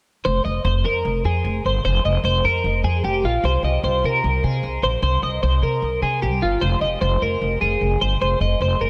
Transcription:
0.25 upright bass F1, clean electric guitar C5
0.45 upright bass F1, clean electric guitar D#5
0.65 upright bass F1, clean electric guitar C5
0.85 upright bass F2, clean electric guitar A#4
1.05 upright bass F1
1.25 upright bass F2, clean electric guitar G#4
1.45 upright bass F1
1.65 upright bass G1, clean electric guitar C5
1.85 upright bass F1, clean electric guitar C5
2.05 upright bass F1, clean electric guitar D#5
2.24 upright bass F1, clean electric guitar C5
2.44 upright bass F2, clean electric guitar A#4
2.64 upright bass F1
2.84 upright bass F2, clean electric guitar G#4
3.04 upright bass F1, clean electric guitar G4
3.24 upright bass A#1, clean electric guitar F4
3.44 upright bass C2, clean electric guitar C5
3.63 upright bass C2, clean electric guitar D#5
3.84 upright bass C2, clean electric guitar C5
4.04 upright bass C3, clean electric guitar A#4
4.24 upright bass C2
4.44 upright bass C3, clean electric guitar G#4
4.63 upright bass C2
4.83 upright bass A#1, clean electric guitar C5
5.02 upright bass C2, clean electric guitar C5
5.23 upright bass C2, clean electric guitar D#5
5.43 upright bass C2, clean electric guitar C5
5.62 upright bass C3, clean electric guitar A#4
5.82 upright bass C2
6.02 upright bass C3, clean electric guitar G#4
6.22 upright bass C2, clean electric guitar G4
6.42 upright bass G1, clean electric guitar F4
6.61 upright bass F1, clean electric guitar C5
6.81 upright bass F1, clean electric guitar D#5
7.01 upright bass F1, clean electric guitar C5
7.22 upright bass F1, clean electric guitar A#4
7.42 upright bass F1
7.61 upright bass F1, clean electric guitar G#4
7.81 upright bass F1
8.01 upright bass G1, clean electric guitar C5
8.21 upright bass F1, clean electric guitar C5
8.41 upright bass F1, clean electric guitar D#5
8.60 upright bass F1, clean electric guitar C5
8.81 upright bass F1, clean electric guitar A#4

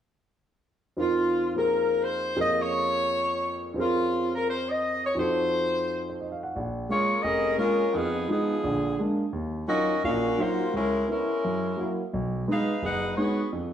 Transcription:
0.97 grand piano F2 F3 C4 D#4 A#4, saxophone section F4
1.55 grand piano F3 A#3 C4 G#4, saxophone section A#4
2.03 saxophone section C5
2.36 grand piano F2 F3 A#3 C#4 G#4 A#4
2.40 saxophone section D#5
2.62 saxophone section C#5
3.74 grand piano F2 F3 C4 C#4
3.78 saxophone section F4, grand piano G#4 A#4
4.35 saxophone section A#4
4.50 saxophone section C5
4.69 saxophone section D#5
5.05 saxophone section C#5
5.15 grand piano F2 F3 D#4 F#4
5.19 grand piano A4, saxophone section C5
6.10 grand piano C5
6.21 grand piano D#5
6.32 grand piano F5
6.43 grand piano F#5
6.56 grand piano A#1
6.89 grand piano G#3 A#3 C#4, saxophone section A#3 F4 G#4 C#5
7.22 grand piano F1, saxophone section C#4 G#4 A#4 D#5
7.58 grand piano G#3 A#3 C#4, saxophone section G#3 C#4 F4 A#4
7.94 grand piano F2, saxophone section F3 B3 D#4 G#4
8.28 grand piano F3 G#3 D#4, saxophone section F3 B3 D#4 G#4
8.64 grand piano A#1 D3
9.00 grand piano G#3 A#3 D4
9.33 grand piano D#2
9.68 grand piano F#3 C#4 D#4 F4, saxophone section C#4 F#4 A#4 D#5
10.04 grand piano A#1 A#2, saxophone section C#4 F#4 A#4 F5
10.37 grand piano F#3 C#4 D#4 F4, saxophone section A#3 F4 F#4 C5
10.73 grand piano C#2, saxophone section G#3 C#4 E4 A#4
11.08 grand piano B3 C#4 E4, saxophone section C#4 E4 A#4
11.12 saxophone section G#3
11.45 grand piano F#2
11.77 grand piano F#3 A#3 E4
12.13 grand piano B1
12.48 grand piano G#3 B3 D#4, saxophone section D#4 G#4 B4 F5
12.82 grand piano F#1, saxophone section D#4 G#4 B4 F#5
13.17 grand piano G#3 B3 D#4, saxophone section B3 F#4 G#4 C#5
13.53 grand piano F2

